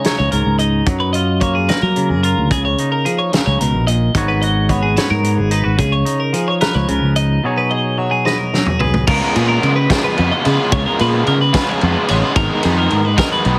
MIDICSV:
0, 0, Header, 1, 6, 480
1, 0, Start_track
1, 0, Tempo, 546946
1, 765, Time_signature, 6, 3, 24, 8
1, 11926, End_track
2, 0, Start_track
2, 0, Title_t, "Clean electric guitar"
2, 0, Program_c, 0, 27
2, 40, Note_on_c, 0, 70, 75
2, 158, Note_off_c, 0, 70, 0
2, 161, Note_on_c, 0, 73, 69
2, 275, Note_off_c, 0, 73, 0
2, 279, Note_on_c, 0, 70, 66
2, 511, Note_off_c, 0, 70, 0
2, 515, Note_on_c, 0, 75, 68
2, 760, Note_off_c, 0, 75, 0
2, 878, Note_on_c, 0, 71, 66
2, 987, Note_off_c, 0, 71, 0
2, 991, Note_on_c, 0, 75, 73
2, 1232, Note_off_c, 0, 75, 0
2, 1235, Note_on_c, 0, 73, 65
2, 1358, Note_on_c, 0, 68, 62
2, 1360, Note_off_c, 0, 73, 0
2, 1480, Note_on_c, 0, 71, 72
2, 1481, Note_off_c, 0, 68, 0
2, 1597, Note_off_c, 0, 71, 0
2, 1601, Note_on_c, 0, 70, 63
2, 1838, Note_off_c, 0, 70, 0
2, 1838, Note_on_c, 0, 68, 67
2, 1957, Note_off_c, 0, 68, 0
2, 1961, Note_on_c, 0, 70, 69
2, 2202, Note_off_c, 0, 70, 0
2, 2206, Note_on_c, 0, 68, 82
2, 2321, Note_off_c, 0, 68, 0
2, 2324, Note_on_c, 0, 73, 69
2, 2557, Note_off_c, 0, 73, 0
2, 2561, Note_on_c, 0, 70, 64
2, 2679, Note_on_c, 0, 68, 67
2, 2682, Note_off_c, 0, 70, 0
2, 2795, Note_on_c, 0, 73, 63
2, 2801, Note_off_c, 0, 68, 0
2, 2916, Note_off_c, 0, 73, 0
2, 2916, Note_on_c, 0, 70, 77
2, 3034, Note_off_c, 0, 70, 0
2, 3038, Note_on_c, 0, 73, 67
2, 3150, Note_off_c, 0, 73, 0
2, 3150, Note_on_c, 0, 70, 67
2, 3394, Note_off_c, 0, 70, 0
2, 3398, Note_on_c, 0, 75, 73
2, 3640, Note_off_c, 0, 75, 0
2, 3758, Note_on_c, 0, 71, 70
2, 3876, Note_on_c, 0, 75, 78
2, 3881, Note_off_c, 0, 71, 0
2, 4115, Note_off_c, 0, 75, 0
2, 4115, Note_on_c, 0, 73, 72
2, 4234, Note_on_c, 0, 68, 66
2, 4239, Note_off_c, 0, 73, 0
2, 4357, Note_off_c, 0, 68, 0
2, 4357, Note_on_c, 0, 71, 73
2, 4475, Note_off_c, 0, 71, 0
2, 4479, Note_on_c, 0, 70, 67
2, 4719, Note_off_c, 0, 70, 0
2, 4719, Note_on_c, 0, 68, 67
2, 4844, Note_off_c, 0, 68, 0
2, 4844, Note_on_c, 0, 71, 71
2, 5080, Note_off_c, 0, 71, 0
2, 5084, Note_on_c, 0, 68, 84
2, 5198, Note_on_c, 0, 73, 67
2, 5204, Note_off_c, 0, 68, 0
2, 5439, Note_on_c, 0, 70, 69
2, 5441, Note_off_c, 0, 73, 0
2, 5565, Note_off_c, 0, 70, 0
2, 5565, Note_on_c, 0, 68, 73
2, 5685, Note_off_c, 0, 68, 0
2, 5686, Note_on_c, 0, 73, 66
2, 5797, Note_off_c, 0, 73, 0
2, 5800, Note_on_c, 0, 70, 79
2, 5922, Note_off_c, 0, 70, 0
2, 5922, Note_on_c, 0, 73, 70
2, 6041, Note_off_c, 0, 73, 0
2, 6041, Note_on_c, 0, 70, 70
2, 6281, Note_off_c, 0, 70, 0
2, 6285, Note_on_c, 0, 75, 72
2, 6525, Note_off_c, 0, 75, 0
2, 6649, Note_on_c, 0, 71, 70
2, 6764, Note_on_c, 0, 75, 79
2, 6767, Note_off_c, 0, 71, 0
2, 7001, Note_off_c, 0, 75, 0
2, 7001, Note_on_c, 0, 73, 78
2, 7118, Note_on_c, 0, 68, 68
2, 7123, Note_off_c, 0, 73, 0
2, 7243, Note_off_c, 0, 68, 0
2, 7243, Note_on_c, 0, 71, 80
2, 7357, Note_off_c, 0, 71, 0
2, 7357, Note_on_c, 0, 70, 70
2, 7601, Note_off_c, 0, 70, 0
2, 7601, Note_on_c, 0, 68, 70
2, 7718, Note_off_c, 0, 68, 0
2, 7718, Note_on_c, 0, 71, 74
2, 7960, Note_off_c, 0, 71, 0
2, 7963, Note_on_c, 0, 70, 90
2, 8207, Note_off_c, 0, 70, 0
2, 8207, Note_on_c, 0, 68, 86
2, 8320, Note_off_c, 0, 68, 0
2, 8324, Note_on_c, 0, 70, 73
2, 8561, Note_off_c, 0, 70, 0
2, 8564, Note_on_c, 0, 71, 73
2, 8691, Note_off_c, 0, 71, 0
2, 8691, Note_on_c, 0, 70, 84
2, 8810, Note_off_c, 0, 70, 0
2, 8814, Note_on_c, 0, 71, 75
2, 9051, Note_off_c, 0, 71, 0
2, 9052, Note_on_c, 0, 75, 74
2, 9173, Note_off_c, 0, 75, 0
2, 9173, Note_on_c, 0, 71, 86
2, 9409, Note_off_c, 0, 71, 0
2, 9412, Note_on_c, 0, 73, 91
2, 9527, Note_off_c, 0, 73, 0
2, 9530, Note_on_c, 0, 70, 78
2, 9649, Note_off_c, 0, 70, 0
2, 9659, Note_on_c, 0, 71, 87
2, 9890, Note_off_c, 0, 71, 0
2, 9894, Note_on_c, 0, 70, 83
2, 10011, Note_off_c, 0, 70, 0
2, 10016, Note_on_c, 0, 71, 78
2, 10260, Note_off_c, 0, 71, 0
2, 10260, Note_on_c, 0, 73, 80
2, 10376, Note_off_c, 0, 73, 0
2, 10376, Note_on_c, 0, 71, 76
2, 10615, Note_off_c, 0, 71, 0
2, 10615, Note_on_c, 0, 73, 84
2, 10729, Note_off_c, 0, 73, 0
2, 10729, Note_on_c, 0, 71, 76
2, 10845, Note_off_c, 0, 71, 0
2, 10848, Note_on_c, 0, 70, 96
2, 11090, Note_off_c, 0, 70, 0
2, 11090, Note_on_c, 0, 68, 88
2, 11210, Note_off_c, 0, 68, 0
2, 11214, Note_on_c, 0, 70, 74
2, 11453, Note_off_c, 0, 70, 0
2, 11453, Note_on_c, 0, 71, 73
2, 11568, Note_off_c, 0, 71, 0
2, 11571, Note_on_c, 0, 70, 94
2, 11689, Note_off_c, 0, 70, 0
2, 11692, Note_on_c, 0, 71, 76
2, 11926, Note_off_c, 0, 71, 0
2, 11926, End_track
3, 0, Start_track
3, 0, Title_t, "Clean electric guitar"
3, 0, Program_c, 1, 27
3, 0, Note_on_c, 1, 49, 67
3, 0, Note_on_c, 1, 56, 59
3, 0, Note_on_c, 1, 63, 51
3, 55, Note_on_c, 1, 73, 59
3, 285, Note_off_c, 1, 49, 0
3, 287, Note_on_c, 1, 44, 61
3, 523, Note_off_c, 1, 63, 0
3, 526, Note_on_c, 1, 63, 51
3, 766, Note_off_c, 1, 44, 0
3, 766, Note_on_c, 1, 54, 67
3, 792, Note_off_c, 1, 56, 0
3, 1007, Note_off_c, 1, 63, 0
3, 1010, Note_on_c, 1, 65, 51
3, 1245, Note_on_c, 1, 58, 60
3, 1481, Note_off_c, 1, 73, 0
3, 1484, Note_on_c, 1, 70, 57
3, 1724, Note_on_c, 1, 49, 58
3, 1960, Note_off_c, 1, 65, 0
3, 1970, Note_on_c, 1, 65, 53
3, 2175, Note_off_c, 1, 49, 0
3, 2175, Note_off_c, 1, 54, 0
3, 2178, Note_off_c, 1, 65, 0
3, 2198, Note_on_c, 1, 49, 68
3, 2453, Note_on_c, 1, 63, 52
3, 2680, Note_off_c, 1, 49, 0
3, 2681, Note_on_c, 1, 53, 59
3, 2919, Note_off_c, 1, 53, 0
3, 2923, Note_on_c, 1, 49, 63
3, 3163, Note_off_c, 1, 49, 0
3, 3167, Note_on_c, 1, 47, 60
3, 3194, Note_off_c, 1, 58, 0
3, 3194, Note_off_c, 1, 70, 0
3, 3399, Note_off_c, 1, 47, 0
3, 3403, Note_on_c, 1, 46, 62
3, 3636, Note_off_c, 1, 46, 0
3, 3640, Note_on_c, 1, 44, 72
3, 3649, Note_on_c, 1, 59, 58
3, 3656, Note_off_c, 1, 63, 0
3, 3656, Note_on_c, 1, 63, 57
3, 3663, Note_on_c, 1, 66, 57
3, 3666, Note_on_c, 1, 73, 67
3, 3881, Note_off_c, 1, 66, 0
3, 3891, Note_on_c, 1, 66, 54
3, 4126, Note_off_c, 1, 59, 0
3, 4130, Note_on_c, 1, 59, 62
3, 4367, Note_off_c, 1, 73, 0
3, 4371, Note_on_c, 1, 73, 60
3, 4580, Note_off_c, 1, 44, 0
3, 4591, Note_on_c, 1, 44, 62
3, 4833, Note_off_c, 1, 66, 0
3, 4836, Note_off_c, 1, 63, 0
3, 4836, Note_on_c, 1, 63, 57
3, 4946, Note_off_c, 1, 63, 0
3, 4946, Note_on_c, 1, 66, 46
3, 5067, Note_off_c, 1, 44, 0
3, 5070, Note_on_c, 1, 49, 70
3, 5075, Note_off_c, 1, 66, 0
3, 5097, Note_off_c, 1, 59, 0
3, 5313, Note_on_c, 1, 63, 51
3, 5339, Note_off_c, 1, 73, 0
3, 5554, Note_on_c, 1, 53, 65
3, 5558, Note_off_c, 1, 49, 0
3, 5801, Note_on_c, 1, 71, 60
3, 6043, Note_on_c, 1, 49, 63
3, 6282, Note_off_c, 1, 63, 0
3, 6285, Note_on_c, 1, 63, 54
3, 6492, Note_off_c, 1, 53, 0
3, 6496, Note_off_c, 1, 49, 0
3, 6525, Note_on_c, 1, 47, 69
3, 6533, Note_on_c, 1, 54, 62
3, 6538, Note_off_c, 1, 63, 0
3, 6538, Note_on_c, 1, 63, 59
3, 6542, Note_on_c, 1, 68, 62
3, 6547, Note_off_c, 1, 71, 0
3, 6551, Note_on_c, 1, 73, 67
3, 6761, Note_off_c, 1, 68, 0
3, 6772, Note_on_c, 1, 68, 57
3, 6994, Note_off_c, 1, 54, 0
3, 7005, Note_on_c, 1, 54, 64
3, 7245, Note_off_c, 1, 73, 0
3, 7249, Note_on_c, 1, 75, 65
3, 7480, Note_off_c, 1, 54, 0
3, 7490, Note_on_c, 1, 54, 58
3, 7720, Note_off_c, 1, 68, 0
3, 7731, Note_on_c, 1, 68, 56
3, 7938, Note_off_c, 1, 47, 0
3, 7939, Note_off_c, 1, 75, 0
3, 7940, Note_off_c, 1, 54, 0
3, 7940, Note_off_c, 1, 68, 0
3, 7944, Note_off_c, 1, 63, 0
3, 11926, End_track
4, 0, Start_track
4, 0, Title_t, "Overdriven electric guitar"
4, 0, Program_c, 2, 29
4, 7967, Note_on_c, 2, 49, 85
4, 7968, Note_on_c, 2, 56, 89
4, 7973, Note_on_c, 2, 59, 89
4, 7974, Note_on_c, 2, 65, 98
4, 8197, Note_off_c, 2, 65, 0
4, 8200, Note_off_c, 2, 59, 0
4, 8205, Note_off_c, 2, 49, 0
4, 8205, Note_off_c, 2, 56, 0
4, 8208, Note_on_c, 2, 65, 83
4, 8210, Note_on_c, 2, 59, 88
4, 8215, Note_on_c, 2, 49, 70
4, 8216, Note_on_c, 2, 56, 73
4, 8520, Note_off_c, 2, 65, 0
4, 8521, Note_off_c, 2, 59, 0
4, 8524, Note_off_c, 2, 49, 0
4, 8524, Note_off_c, 2, 56, 0
4, 8687, Note_on_c, 2, 65, 104
4, 8688, Note_on_c, 2, 59, 89
4, 8692, Note_on_c, 2, 56, 83
4, 8696, Note_on_c, 2, 49, 87
4, 8912, Note_off_c, 2, 49, 0
4, 8916, Note_off_c, 2, 56, 0
4, 8919, Note_off_c, 2, 59, 0
4, 8923, Note_on_c, 2, 49, 75
4, 8924, Note_off_c, 2, 65, 0
4, 8926, Note_on_c, 2, 56, 77
4, 8930, Note_on_c, 2, 59, 73
4, 8935, Note_on_c, 2, 65, 91
4, 9158, Note_off_c, 2, 65, 0
4, 9162, Note_off_c, 2, 59, 0
4, 9165, Note_off_c, 2, 49, 0
4, 9167, Note_off_c, 2, 56, 0
4, 9169, Note_on_c, 2, 65, 84
4, 9172, Note_on_c, 2, 59, 79
4, 9177, Note_on_c, 2, 56, 74
4, 9181, Note_on_c, 2, 49, 64
4, 9393, Note_off_c, 2, 49, 0
4, 9397, Note_off_c, 2, 56, 0
4, 9403, Note_off_c, 2, 59, 0
4, 9403, Note_on_c, 2, 49, 85
4, 9404, Note_off_c, 2, 65, 0
4, 9408, Note_on_c, 2, 56, 94
4, 9414, Note_on_c, 2, 59, 87
4, 9415, Note_on_c, 2, 65, 97
4, 9635, Note_off_c, 2, 65, 0
4, 9639, Note_off_c, 2, 59, 0
4, 9643, Note_off_c, 2, 56, 0
4, 9646, Note_off_c, 2, 49, 0
4, 9646, Note_on_c, 2, 65, 93
4, 9650, Note_on_c, 2, 59, 87
4, 9654, Note_on_c, 2, 56, 74
4, 9656, Note_on_c, 2, 49, 75
4, 9959, Note_off_c, 2, 65, 0
4, 9961, Note_off_c, 2, 59, 0
4, 9963, Note_off_c, 2, 56, 0
4, 9964, Note_off_c, 2, 49, 0
4, 10118, Note_on_c, 2, 65, 95
4, 10125, Note_on_c, 2, 56, 85
4, 10126, Note_on_c, 2, 59, 88
4, 10132, Note_on_c, 2, 49, 82
4, 10351, Note_off_c, 2, 49, 0
4, 10356, Note_off_c, 2, 56, 0
4, 10359, Note_off_c, 2, 59, 0
4, 10361, Note_on_c, 2, 49, 72
4, 10363, Note_off_c, 2, 65, 0
4, 10367, Note_on_c, 2, 56, 74
4, 10370, Note_on_c, 2, 59, 77
4, 10373, Note_on_c, 2, 65, 82
4, 10601, Note_off_c, 2, 65, 0
4, 10605, Note_off_c, 2, 49, 0
4, 10605, Note_off_c, 2, 56, 0
4, 10606, Note_off_c, 2, 59, 0
4, 10612, Note_on_c, 2, 65, 87
4, 10616, Note_on_c, 2, 56, 73
4, 10616, Note_on_c, 2, 59, 85
4, 10621, Note_on_c, 2, 49, 69
4, 10835, Note_off_c, 2, 56, 0
4, 10837, Note_off_c, 2, 59, 0
4, 10839, Note_off_c, 2, 49, 0
4, 10842, Note_on_c, 2, 51, 86
4, 10845, Note_on_c, 2, 56, 93
4, 10848, Note_on_c, 2, 59, 96
4, 10850, Note_off_c, 2, 65, 0
4, 10853, Note_on_c, 2, 63, 98
4, 11071, Note_off_c, 2, 63, 0
4, 11076, Note_off_c, 2, 59, 0
4, 11079, Note_off_c, 2, 56, 0
4, 11081, Note_off_c, 2, 51, 0
4, 11082, Note_on_c, 2, 63, 99
4, 11086, Note_on_c, 2, 59, 92
4, 11089, Note_on_c, 2, 56, 83
4, 11091, Note_on_c, 2, 51, 80
4, 11398, Note_off_c, 2, 63, 0
4, 11400, Note_off_c, 2, 59, 0
4, 11401, Note_off_c, 2, 56, 0
4, 11402, Note_off_c, 2, 51, 0
4, 11560, Note_on_c, 2, 63, 103
4, 11567, Note_on_c, 2, 59, 95
4, 11571, Note_on_c, 2, 56, 85
4, 11572, Note_on_c, 2, 51, 76
4, 11793, Note_off_c, 2, 56, 0
4, 11794, Note_off_c, 2, 51, 0
4, 11797, Note_off_c, 2, 59, 0
4, 11804, Note_on_c, 2, 51, 73
4, 11804, Note_on_c, 2, 56, 79
4, 11805, Note_off_c, 2, 63, 0
4, 11807, Note_on_c, 2, 59, 88
4, 11815, Note_on_c, 2, 63, 79
4, 11926, Note_off_c, 2, 51, 0
4, 11926, Note_off_c, 2, 56, 0
4, 11926, Note_off_c, 2, 59, 0
4, 11926, Note_off_c, 2, 63, 0
4, 11926, End_track
5, 0, Start_track
5, 0, Title_t, "Fingered electric bass"
5, 0, Program_c, 3, 33
5, 172, Note_on_c, 3, 37, 80
5, 272, Note_off_c, 3, 37, 0
5, 287, Note_on_c, 3, 37, 79
5, 389, Note_off_c, 3, 37, 0
5, 406, Note_on_c, 3, 37, 89
5, 714, Note_off_c, 3, 37, 0
5, 760, Note_on_c, 3, 42, 86
5, 1480, Note_off_c, 3, 42, 0
5, 1602, Note_on_c, 3, 54, 86
5, 1841, Note_on_c, 3, 42, 85
5, 1854, Note_off_c, 3, 54, 0
5, 2047, Note_off_c, 3, 42, 0
5, 2086, Note_on_c, 3, 38, 80
5, 2188, Note_off_c, 3, 38, 0
5, 2202, Note_on_c, 3, 37, 90
5, 2408, Note_off_c, 3, 37, 0
5, 3045, Note_on_c, 3, 37, 86
5, 3147, Note_off_c, 3, 37, 0
5, 3166, Note_on_c, 3, 37, 79
5, 3267, Note_off_c, 3, 37, 0
5, 3284, Note_on_c, 3, 34, 89
5, 3592, Note_off_c, 3, 34, 0
5, 3638, Note_on_c, 3, 32, 90
5, 4360, Note_off_c, 3, 32, 0
5, 4480, Note_on_c, 3, 44, 92
5, 4721, Note_on_c, 3, 32, 87
5, 4735, Note_off_c, 3, 44, 0
5, 4928, Note_off_c, 3, 32, 0
5, 4964, Note_on_c, 3, 32, 79
5, 5067, Note_off_c, 3, 32, 0
5, 5078, Note_on_c, 3, 37, 91
5, 5286, Note_off_c, 3, 37, 0
5, 5925, Note_on_c, 3, 37, 88
5, 6028, Note_off_c, 3, 37, 0
5, 6053, Note_on_c, 3, 37, 83
5, 6153, Note_off_c, 3, 37, 0
5, 6171, Note_on_c, 3, 37, 85
5, 6477, Note_off_c, 3, 37, 0
5, 7966, Note_on_c, 3, 37, 106
5, 8069, Note_off_c, 3, 37, 0
5, 8216, Note_on_c, 3, 46, 101
5, 8418, Note_off_c, 3, 46, 0
5, 8452, Note_on_c, 3, 49, 83
5, 8656, Note_off_c, 3, 49, 0
5, 8942, Note_on_c, 3, 41, 102
5, 9039, Note_off_c, 3, 41, 0
5, 9179, Note_on_c, 3, 49, 92
5, 9277, Note_off_c, 3, 49, 0
5, 9409, Note_on_c, 3, 37, 96
5, 9512, Note_off_c, 3, 37, 0
5, 9659, Note_on_c, 3, 46, 106
5, 9860, Note_off_c, 3, 46, 0
5, 9893, Note_on_c, 3, 49, 83
5, 10097, Note_off_c, 3, 49, 0
5, 10382, Note_on_c, 3, 41, 101
5, 10479, Note_off_c, 3, 41, 0
5, 10623, Note_on_c, 3, 33, 92
5, 10720, Note_off_c, 3, 33, 0
5, 10846, Note_on_c, 3, 32, 108
5, 10950, Note_off_c, 3, 32, 0
5, 11103, Note_on_c, 3, 41, 107
5, 11303, Note_off_c, 3, 41, 0
5, 11339, Note_on_c, 3, 44, 84
5, 11540, Note_off_c, 3, 44, 0
5, 11809, Note_on_c, 3, 35, 103
5, 11912, Note_off_c, 3, 35, 0
5, 11926, End_track
6, 0, Start_track
6, 0, Title_t, "Drums"
6, 38, Note_on_c, 9, 42, 77
6, 49, Note_on_c, 9, 38, 90
6, 126, Note_off_c, 9, 42, 0
6, 137, Note_off_c, 9, 38, 0
6, 278, Note_on_c, 9, 42, 54
6, 366, Note_off_c, 9, 42, 0
6, 517, Note_on_c, 9, 42, 58
6, 605, Note_off_c, 9, 42, 0
6, 758, Note_on_c, 9, 42, 76
6, 760, Note_on_c, 9, 36, 100
6, 846, Note_off_c, 9, 42, 0
6, 847, Note_off_c, 9, 36, 0
6, 998, Note_on_c, 9, 42, 56
6, 1086, Note_off_c, 9, 42, 0
6, 1237, Note_on_c, 9, 42, 51
6, 1240, Note_on_c, 9, 36, 66
6, 1325, Note_off_c, 9, 42, 0
6, 1328, Note_off_c, 9, 36, 0
6, 1479, Note_on_c, 9, 42, 72
6, 1490, Note_on_c, 9, 38, 101
6, 1567, Note_off_c, 9, 42, 0
6, 1578, Note_off_c, 9, 38, 0
6, 1719, Note_on_c, 9, 42, 50
6, 1807, Note_off_c, 9, 42, 0
6, 1962, Note_on_c, 9, 42, 54
6, 2050, Note_off_c, 9, 42, 0
6, 2201, Note_on_c, 9, 36, 101
6, 2203, Note_on_c, 9, 42, 71
6, 2289, Note_off_c, 9, 36, 0
6, 2291, Note_off_c, 9, 42, 0
6, 2442, Note_on_c, 9, 42, 54
6, 2530, Note_off_c, 9, 42, 0
6, 2682, Note_on_c, 9, 42, 53
6, 2770, Note_off_c, 9, 42, 0
6, 2921, Note_on_c, 9, 42, 73
6, 2932, Note_on_c, 9, 38, 103
6, 3009, Note_off_c, 9, 42, 0
6, 3019, Note_off_c, 9, 38, 0
6, 3164, Note_on_c, 9, 42, 58
6, 3252, Note_off_c, 9, 42, 0
6, 3403, Note_on_c, 9, 42, 58
6, 3491, Note_off_c, 9, 42, 0
6, 3640, Note_on_c, 9, 36, 106
6, 3641, Note_on_c, 9, 42, 84
6, 3728, Note_off_c, 9, 36, 0
6, 3729, Note_off_c, 9, 42, 0
6, 3882, Note_on_c, 9, 42, 57
6, 3969, Note_off_c, 9, 42, 0
6, 4118, Note_on_c, 9, 36, 68
6, 4120, Note_on_c, 9, 42, 54
6, 4206, Note_off_c, 9, 36, 0
6, 4208, Note_off_c, 9, 42, 0
6, 4360, Note_on_c, 9, 42, 74
6, 4371, Note_on_c, 9, 38, 103
6, 4448, Note_off_c, 9, 42, 0
6, 4458, Note_off_c, 9, 38, 0
6, 4601, Note_on_c, 9, 42, 58
6, 4689, Note_off_c, 9, 42, 0
6, 4834, Note_on_c, 9, 42, 55
6, 4922, Note_off_c, 9, 42, 0
6, 5075, Note_on_c, 9, 42, 83
6, 5078, Note_on_c, 9, 36, 102
6, 5163, Note_off_c, 9, 42, 0
6, 5166, Note_off_c, 9, 36, 0
6, 5319, Note_on_c, 9, 42, 59
6, 5407, Note_off_c, 9, 42, 0
6, 5560, Note_on_c, 9, 42, 56
6, 5648, Note_off_c, 9, 42, 0
6, 5800, Note_on_c, 9, 42, 74
6, 5810, Note_on_c, 9, 38, 99
6, 5887, Note_off_c, 9, 42, 0
6, 5898, Note_off_c, 9, 38, 0
6, 6041, Note_on_c, 9, 42, 50
6, 6129, Note_off_c, 9, 42, 0
6, 6282, Note_on_c, 9, 42, 53
6, 6369, Note_off_c, 9, 42, 0
6, 7251, Note_on_c, 9, 38, 52
6, 7339, Note_off_c, 9, 38, 0
6, 7494, Note_on_c, 9, 38, 63
6, 7582, Note_off_c, 9, 38, 0
6, 7603, Note_on_c, 9, 45, 64
6, 7691, Note_off_c, 9, 45, 0
6, 7723, Note_on_c, 9, 43, 81
6, 7811, Note_off_c, 9, 43, 0
6, 7844, Note_on_c, 9, 43, 80
6, 7932, Note_off_c, 9, 43, 0
6, 7965, Note_on_c, 9, 36, 115
6, 7966, Note_on_c, 9, 49, 126
6, 8053, Note_off_c, 9, 36, 0
6, 8054, Note_off_c, 9, 49, 0
6, 8211, Note_on_c, 9, 51, 84
6, 8298, Note_off_c, 9, 51, 0
6, 8451, Note_on_c, 9, 51, 80
6, 8539, Note_off_c, 9, 51, 0
6, 8688, Note_on_c, 9, 36, 81
6, 8689, Note_on_c, 9, 51, 105
6, 8700, Note_on_c, 9, 38, 115
6, 8776, Note_off_c, 9, 36, 0
6, 8777, Note_off_c, 9, 51, 0
6, 8788, Note_off_c, 9, 38, 0
6, 8929, Note_on_c, 9, 51, 70
6, 9017, Note_off_c, 9, 51, 0
6, 9170, Note_on_c, 9, 51, 77
6, 9258, Note_off_c, 9, 51, 0
6, 9409, Note_on_c, 9, 36, 122
6, 9410, Note_on_c, 9, 51, 105
6, 9497, Note_off_c, 9, 36, 0
6, 9498, Note_off_c, 9, 51, 0
6, 9647, Note_on_c, 9, 51, 75
6, 9735, Note_off_c, 9, 51, 0
6, 9887, Note_on_c, 9, 51, 78
6, 9974, Note_off_c, 9, 51, 0
6, 10124, Note_on_c, 9, 51, 102
6, 10128, Note_on_c, 9, 36, 78
6, 10134, Note_on_c, 9, 38, 118
6, 10212, Note_off_c, 9, 51, 0
6, 10215, Note_off_c, 9, 36, 0
6, 10222, Note_off_c, 9, 38, 0
6, 10365, Note_on_c, 9, 51, 72
6, 10453, Note_off_c, 9, 51, 0
6, 10605, Note_on_c, 9, 51, 82
6, 10693, Note_off_c, 9, 51, 0
6, 10845, Note_on_c, 9, 51, 110
6, 10846, Note_on_c, 9, 36, 115
6, 10933, Note_off_c, 9, 51, 0
6, 10934, Note_off_c, 9, 36, 0
6, 11082, Note_on_c, 9, 51, 83
6, 11170, Note_off_c, 9, 51, 0
6, 11325, Note_on_c, 9, 51, 75
6, 11412, Note_off_c, 9, 51, 0
6, 11565, Note_on_c, 9, 36, 82
6, 11566, Note_on_c, 9, 51, 108
6, 11577, Note_on_c, 9, 38, 117
6, 11653, Note_off_c, 9, 36, 0
6, 11654, Note_off_c, 9, 51, 0
6, 11664, Note_off_c, 9, 38, 0
6, 11801, Note_on_c, 9, 51, 85
6, 11889, Note_off_c, 9, 51, 0
6, 11926, End_track
0, 0, End_of_file